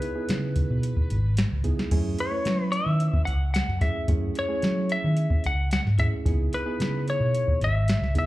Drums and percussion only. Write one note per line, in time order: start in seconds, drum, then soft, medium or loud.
0.02 closed hi-hat medium
0.29 snare loud
0.29 closed hi-hat medium
0.56 kick medium
0.56 closed hi-hat medium
0.83 closed hi-hat medium
0.97 kick medium
1.10 closed hi-hat medium
1.37 snare loud
1.37 closed hi-hat medium
1.64 kick medium
1.64 closed hi-hat medium
1.79 snare medium
1.91 kick loud
1.91 closed hi-hat medium
1.91 crash medium
2.19 closed hi-hat medium
2.45 snare loud
2.45 closed hi-hat medium
2.73 closed hi-hat medium
3.00 closed hi-hat medium
3.14 kick medium
3.27 closed hi-hat medium
3.54 snare loud
3.54 closed hi-hat medium
3.70 snare soft
3.81 kick medium
3.81 snare soft
3.81 closed hi-hat medium
4.08 kick medium
4.08 closed hi-hat medium
4.35 closed hi-hat medium
4.62 snare medium
4.62 closed hi-hat medium
4.89 closed hi-hat medium
5.17 closed hi-hat medium
5.30 kick medium
5.44 closed hi-hat medium
5.71 snare loud
5.71 closed hi-hat medium
5.87 snare soft
5.98 kick medium
5.98 closed hi-hat medium
6.26 kick medium
6.26 closed hi-hat medium
6.53 closed hi-hat medium
6.80 snare loud
6.80 closed hi-hat medium
7.08 closed hi-hat medium
7.35 closed hi-hat medium
7.48 kick medium
7.61 closed hi-hat medium
7.88 snare loud
7.88 closed hi-hat medium
8.04 snare soft
8.15 kick medium
8.15 closed hi-hat medium